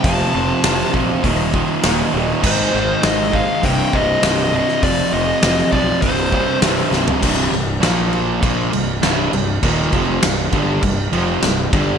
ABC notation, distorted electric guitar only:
X:1
M:4/4
L:1/8
Q:1/4=100
K:Cm
V:1 name="Distorted electric guitar" clef=bass
[F,,C,F,] [F,,C,F,] [F,,C,F,] [F,,C,F,] [E,,B,,E,] [E,,B,,E,] [E,,B,,E,] [E,,B,,E,] | [A,,E,A,] [A,,E,A,] [A,,E,A,] [A,,E,A,] [C,,G,,C,] [C,,G,,C,] [C,,G,,C,] [C,,G,,C,] | [F,,C,F,] [F,,C,F,] [F,,C,F,] [F,,C,F,] [C,,G,,C,] [C,,G,,C,] [C,,G,,C,] [C,,G,,C,] | [C,,G,,C,] [C,,G,,] [B,,F,B,]2 [B,,F,B,] [C,,G,,] [C,,G,,C,] [C,,G,,] |
[E,,B,,E,] [F,,C,F,] [C,,G,,] [G,,D,G,] [C,,G,,] [F,,C,F,] [C,,G,,] [G,,D,G,] |]